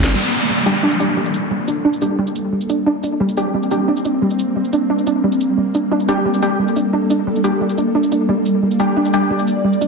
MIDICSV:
0, 0, Header, 1, 7, 480
1, 0, Start_track
1, 0, Key_signature, -2, "minor"
1, 0, Tempo, 338983
1, 215, Time_signature, 4, 2, 24, 8
1, 13986, End_track
2, 0, Start_track
2, 0, Title_t, "Synth pluck"
2, 0, Program_c, 0, 84
2, 215, Note_on_c, 0, 55, 99
2, 279, Note_off_c, 0, 55, 0
2, 695, Note_on_c, 0, 55, 76
2, 802, Note_off_c, 0, 55, 0
2, 935, Note_on_c, 0, 62, 76
2, 1042, Note_off_c, 0, 62, 0
2, 1175, Note_on_c, 0, 62, 101
2, 1335, Note_off_c, 0, 62, 0
2, 1415, Note_on_c, 0, 62, 73
2, 1522, Note_off_c, 0, 62, 0
2, 1655, Note_on_c, 0, 55, 99
2, 1719, Note_off_c, 0, 55, 0
2, 2135, Note_on_c, 0, 55, 78
2, 2242, Note_off_c, 0, 55, 0
2, 2375, Note_on_c, 0, 62, 76
2, 2482, Note_off_c, 0, 62, 0
2, 2615, Note_on_c, 0, 62, 102
2, 2775, Note_off_c, 0, 62, 0
2, 2856, Note_on_c, 0, 62, 77
2, 2962, Note_off_c, 0, 62, 0
2, 3095, Note_on_c, 0, 55, 102
2, 3159, Note_off_c, 0, 55, 0
2, 3575, Note_on_c, 0, 55, 74
2, 3682, Note_off_c, 0, 55, 0
2, 3815, Note_on_c, 0, 62, 72
2, 3922, Note_off_c, 0, 62, 0
2, 4055, Note_on_c, 0, 62, 99
2, 4215, Note_off_c, 0, 62, 0
2, 4295, Note_on_c, 0, 62, 79
2, 4402, Note_off_c, 0, 62, 0
2, 4535, Note_on_c, 0, 55, 101
2, 4599, Note_off_c, 0, 55, 0
2, 5015, Note_on_c, 0, 55, 84
2, 5122, Note_off_c, 0, 55, 0
2, 5255, Note_on_c, 0, 62, 74
2, 5362, Note_off_c, 0, 62, 0
2, 5495, Note_on_c, 0, 62, 97
2, 5655, Note_off_c, 0, 62, 0
2, 5735, Note_on_c, 0, 62, 75
2, 5842, Note_off_c, 0, 62, 0
2, 5975, Note_on_c, 0, 55, 99
2, 6039, Note_off_c, 0, 55, 0
2, 6455, Note_on_c, 0, 55, 77
2, 6562, Note_off_c, 0, 55, 0
2, 6696, Note_on_c, 0, 62, 79
2, 6802, Note_off_c, 0, 62, 0
2, 6936, Note_on_c, 0, 62, 101
2, 7096, Note_off_c, 0, 62, 0
2, 7176, Note_on_c, 0, 62, 75
2, 7282, Note_off_c, 0, 62, 0
2, 7416, Note_on_c, 0, 55, 101
2, 7480, Note_off_c, 0, 55, 0
2, 7895, Note_on_c, 0, 55, 83
2, 8002, Note_off_c, 0, 55, 0
2, 8135, Note_on_c, 0, 62, 76
2, 8242, Note_off_c, 0, 62, 0
2, 8375, Note_on_c, 0, 62, 107
2, 8535, Note_off_c, 0, 62, 0
2, 8616, Note_on_c, 0, 62, 78
2, 8722, Note_off_c, 0, 62, 0
2, 8855, Note_on_c, 0, 55, 104
2, 8919, Note_off_c, 0, 55, 0
2, 9335, Note_on_c, 0, 55, 76
2, 9442, Note_off_c, 0, 55, 0
2, 9576, Note_on_c, 0, 62, 74
2, 9682, Note_off_c, 0, 62, 0
2, 9816, Note_on_c, 0, 62, 99
2, 9975, Note_off_c, 0, 62, 0
2, 10055, Note_on_c, 0, 62, 75
2, 10162, Note_off_c, 0, 62, 0
2, 10295, Note_on_c, 0, 55, 104
2, 10359, Note_off_c, 0, 55, 0
2, 10775, Note_on_c, 0, 55, 84
2, 10882, Note_off_c, 0, 55, 0
2, 11015, Note_on_c, 0, 62, 74
2, 11122, Note_off_c, 0, 62, 0
2, 11255, Note_on_c, 0, 62, 101
2, 11415, Note_off_c, 0, 62, 0
2, 11495, Note_on_c, 0, 62, 74
2, 11602, Note_off_c, 0, 62, 0
2, 11735, Note_on_c, 0, 55, 100
2, 11799, Note_off_c, 0, 55, 0
2, 12216, Note_on_c, 0, 55, 79
2, 12322, Note_off_c, 0, 55, 0
2, 12456, Note_on_c, 0, 62, 75
2, 12562, Note_off_c, 0, 62, 0
2, 12695, Note_on_c, 0, 62, 105
2, 12855, Note_off_c, 0, 62, 0
2, 12935, Note_on_c, 0, 62, 75
2, 13042, Note_off_c, 0, 62, 0
2, 13175, Note_on_c, 0, 55, 100
2, 13239, Note_off_c, 0, 55, 0
2, 13655, Note_on_c, 0, 55, 82
2, 13762, Note_off_c, 0, 55, 0
2, 13895, Note_on_c, 0, 62, 78
2, 13986, Note_off_c, 0, 62, 0
2, 13986, End_track
3, 0, Start_track
3, 0, Title_t, "Synth stab"
3, 0, Program_c, 1, 62
3, 935, Note_on_c, 1, 55, 79
3, 935, Note_on_c, 1, 62, 74
3, 935, Note_on_c, 1, 67, 89
3, 1046, Note_off_c, 1, 55, 0
3, 1046, Note_off_c, 1, 62, 0
3, 1046, Note_off_c, 1, 67, 0
3, 1416, Note_on_c, 1, 55, 71
3, 1416, Note_on_c, 1, 62, 66
3, 1416, Note_on_c, 1, 67, 80
3, 1526, Note_off_c, 1, 55, 0
3, 1526, Note_off_c, 1, 62, 0
3, 1526, Note_off_c, 1, 67, 0
3, 2855, Note_on_c, 1, 55, 73
3, 2855, Note_on_c, 1, 62, 66
3, 2855, Note_on_c, 1, 67, 80
3, 2966, Note_off_c, 1, 55, 0
3, 2966, Note_off_c, 1, 62, 0
3, 2966, Note_off_c, 1, 67, 0
3, 4776, Note_on_c, 1, 55, 79
3, 4776, Note_on_c, 1, 62, 74
3, 4776, Note_on_c, 1, 67, 87
3, 4886, Note_off_c, 1, 55, 0
3, 4886, Note_off_c, 1, 62, 0
3, 4886, Note_off_c, 1, 67, 0
3, 5256, Note_on_c, 1, 55, 73
3, 5256, Note_on_c, 1, 62, 65
3, 5256, Note_on_c, 1, 67, 80
3, 5366, Note_off_c, 1, 55, 0
3, 5366, Note_off_c, 1, 62, 0
3, 5366, Note_off_c, 1, 67, 0
3, 8616, Note_on_c, 1, 55, 80
3, 8616, Note_on_c, 1, 62, 71
3, 8616, Note_on_c, 1, 67, 85
3, 8726, Note_off_c, 1, 55, 0
3, 8726, Note_off_c, 1, 62, 0
3, 8726, Note_off_c, 1, 67, 0
3, 9096, Note_on_c, 1, 55, 74
3, 9096, Note_on_c, 1, 62, 67
3, 9096, Note_on_c, 1, 67, 82
3, 9206, Note_off_c, 1, 55, 0
3, 9206, Note_off_c, 1, 62, 0
3, 9206, Note_off_c, 1, 67, 0
3, 10535, Note_on_c, 1, 67, 80
3, 10536, Note_on_c, 1, 55, 70
3, 10536, Note_on_c, 1, 62, 66
3, 10646, Note_off_c, 1, 55, 0
3, 10646, Note_off_c, 1, 62, 0
3, 10646, Note_off_c, 1, 67, 0
3, 12456, Note_on_c, 1, 55, 81
3, 12456, Note_on_c, 1, 62, 75
3, 12456, Note_on_c, 1, 67, 92
3, 12566, Note_off_c, 1, 55, 0
3, 12566, Note_off_c, 1, 62, 0
3, 12566, Note_off_c, 1, 67, 0
3, 12935, Note_on_c, 1, 55, 72
3, 12935, Note_on_c, 1, 62, 68
3, 12936, Note_on_c, 1, 67, 83
3, 13046, Note_off_c, 1, 55, 0
3, 13046, Note_off_c, 1, 62, 0
3, 13046, Note_off_c, 1, 67, 0
3, 13986, End_track
4, 0, Start_track
4, 0, Title_t, "Synth drone"
4, 0, Program_c, 2, 95
4, 0, Note_on_c, 2, 55, 81
4, 0, Note_on_c, 2, 58, 76
4, 0, Note_on_c, 2, 74, 92
4, 159, Note_off_c, 2, 55, 0
4, 159, Note_off_c, 2, 58, 0
4, 183, Note_off_c, 2, 74, 0
4, 215, Note_on_c, 2, 58, 73
4, 215, Note_on_c, 2, 69, 87
4, 216, Note_on_c, 2, 55, 77
4, 4041, Note_off_c, 2, 69, 0
4, 4055, Note_on_c, 2, 60, 88
4, 7881, Note_off_c, 2, 60, 0
4, 7895, Note_on_c, 2, 69, 88
4, 11721, Note_off_c, 2, 69, 0
4, 11735, Note_on_c, 2, 74, 91
4, 13986, Note_off_c, 2, 55, 0
4, 13986, Note_off_c, 2, 58, 0
4, 13986, Note_off_c, 2, 74, 0
4, 13986, End_track
5, 0, Start_track
5, 0, Title_t, "Detuned saw bass"
5, 0, Program_c, 3, 39
5, 0, Note_on_c, 3, 31, 96
5, 197, Note_off_c, 3, 31, 0
5, 13986, End_track
6, 0, Start_track
6, 0, Title_t, "Downlifter"
6, 0, Program_c, 4, 103
6, 215, Note_on_c, 4, 60, 67
6, 4055, Note_off_c, 4, 60, 0
6, 13986, End_track
7, 0, Start_track
7, 0, Title_t, "Drums"
7, 55, Note_on_c, 9, 38, 106
7, 197, Note_off_c, 9, 38, 0
7, 216, Note_on_c, 9, 49, 76
7, 357, Note_off_c, 9, 49, 0
7, 455, Note_on_c, 9, 82, 59
7, 597, Note_off_c, 9, 82, 0
7, 815, Note_on_c, 9, 82, 27
7, 935, Note_off_c, 9, 82, 0
7, 935, Note_on_c, 9, 82, 59
7, 1077, Note_off_c, 9, 82, 0
7, 1295, Note_on_c, 9, 82, 28
7, 1415, Note_off_c, 9, 82, 0
7, 1415, Note_on_c, 9, 82, 59
7, 1557, Note_off_c, 9, 82, 0
7, 1776, Note_on_c, 9, 82, 27
7, 1895, Note_off_c, 9, 82, 0
7, 1895, Note_on_c, 9, 82, 59
7, 2037, Note_off_c, 9, 82, 0
7, 2375, Note_on_c, 9, 82, 58
7, 2517, Note_off_c, 9, 82, 0
7, 2735, Note_on_c, 9, 82, 26
7, 2855, Note_off_c, 9, 82, 0
7, 2855, Note_on_c, 9, 82, 58
7, 2997, Note_off_c, 9, 82, 0
7, 3215, Note_on_c, 9, 82, 27
7, 3335, Note_off_c, 9, 82, 0
7, 3335, Note_on_c, 9, 82, 57
7, 3477, Note_off_c, 9, 82, 0
7, 3695, Note_on_c, 9, 82, 26
7, 3815, Note_off_c, 9, 82, 0
7, 3815, Note_on_c, 9, 82, 58
7, 3957, Note_off_c, 9, 82, 0
7, 4295, Note_on_c, 9, 82, 55
7, 4437, Note_off_c, 9, 82, 0
7, 4655, Note_on_c, 9, 82, 25
7, 4775, Note_off_c, 9, 82, 0
7, 4775, Note_on_c, 9, 82, 55
7, 4917, Note_off_c, 9, 82, 0
7, 5135, Note_on_c, 9, 82, 26
7, 5255, Note_off_c, 9, 82, 0
7, 5255, Note_on_c, 9, 82, 54
7, 5396, Note_off_c, 9, 82, 0
7, 5615, Note_on_c, 9, 82, 25
7, 5735, Note_off_c, 9, 82, 0
7, 5735, Note_on_c, 9, 82, 57
7, 5876, Note_off_c, 9, 82, 0
7, 6095, Note_on_c, 9, 82, 25
7, 6215, Note_off_c, 9, 82, 0
7, 6215, Note_on_c, 9, 82, 53
7, 6357, Note_off_c, 9, 82, 0
7, 6576, Note_on_c, 9, 82, 25
7, 6695, Note_off_c, 9, 82, 0
7, 6695, Note_on_c, 9, 82, 53
7, 6837, Note_off_c, 9, 82, 0
7, 7056, Note_on_c, 9, 82, 26
7, 7175, Note_off_c, 9, 82, 0
7, 7175, Note_on_c, 9, 82, 53
7, 7317, Note_off_c, 9, 82, 0
7, 7535, Note_on_c, 9, 82, 26
7, 7655, Note_off_c, 9, 82, 0
7, 7655, Note_on_c, 9, 82, 52
7, 7797, Note_off_c, 9, 82, 0
7, 8135, Note_on_c, 9, 82, 55
7, 8277, Note_off_c, 9, 82, 0
7, 8495, Note_on_c, 9, 82, 26
7, 8615, Note_off_c, 9, 82, 0
7, 8615, Note_on_c, 9, 82, 55
7, 8757, Note_off_c, 9, 82, 0
7, 8976, Note_on_c, 9, 82, 26
7, 9096, Note_off_c, 9, 82, 0
7, 9096, Note_on_c, 9, 82, 54
7, 9237, Note_off_c, 9, 82, 0
7, 9455, Note_on_c, 9, 82, 25
7, 9575, Note_off_c, 9, 82, 0
7, 9575, Note_on_c, 9, 82, 54
7, 9717, Note_off_c, 9, 82, 0
7, 10055, Note_on_c, 9, 82, 56
7, 10196, Note_off_c, 9, 82, 0
7, 10415, Note_on_c, 9, 82, 26
7, 10535, Note_off_c, 9, 82, 0
7, 10535, Note_on_c, 9, 82, 56
7, 10677, Note_off_c, 9, 82, 0
7, 10895, Note_on_c, 9, 82, 27
7, 11015, Note_off_c, 9, 82, 0
7, 11015, Note_on_c, 9, 82, 54
7, 11157, Note_off_c, 9, 82, 0
7, 11375, Note_on_c, 9, 82, 26
7, 11495, Note_off_c, 9, 82, 0
7, 11495, Note_on_c, 9, 82, 55
7, 11636, Note_off_c, 9, 82, 0
7, 11975, Note_on_c, 9, 82, 60
7, 12117, Note_off_c, 9, 82, 0
7, 12335, Note_on_c, 9, 82, 28
7, 12455, Note_off_c, 9, 82, 0
7, 12455, Note_on_c, 9, 82, 58
7, 12596, Note_off_c, 9, 82, 0
7, 12815, Note_on_c, 9, 82, 27
7, 12935, Note_off_c, 9, 82, 0
7, 12935, Note_on_c, 9, 82, 60
7, 13077, Note_off_c, 9, 82, 0
7, 13296, Note_on_c, 9, 82, 27
7, 13415, Note_off_c, 9, 82, 0
7, 13415, Note_on_c, 9, 82, 59
7, 13557, Note_off_c, 9, 82, 0
7, 13776, Note_on_c, 9, 82, 28
7, 13896, Note_off_c, 9, 82, 0
7, 13896, Note_on_c, 9, 82, 62
7, 13986, Note_off_c, 9, 82, 0
7, 13986, End_track
0, 0, End_of_file